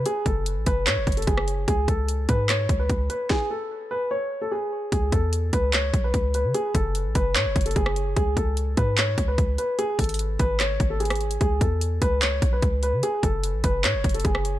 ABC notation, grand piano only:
X:1
M:4/4
L:1/16
Q:1/4=148
K:C#m
V:1 name="Grand piano"
G2 A4 B2 c3 A G4 | G2 A4 B2 c3 B3 B2 | G2 A4 B2 c3 A G4 | G2 A4 B2 c3 B3 B2 |
G2 A4 B2 c3 A G4 | G2 A4 B2 c3 B3 B2 | G2 A4 B2 c3 A G4 | G2 A4 B2 c3 B3 B2 |
G2 A4 B2 c3 A G4 |]